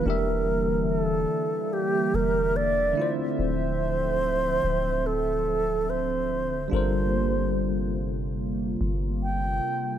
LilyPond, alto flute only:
\new Staff \with { instrumentName = "Alto flute" } { \time 4/4 \key d \minor \tempo 4 = 72 bes'4 a'4 g'8 bes'8 d''8 r8 | c''2 a'4 c''4 | c''4. r4. g''4 | }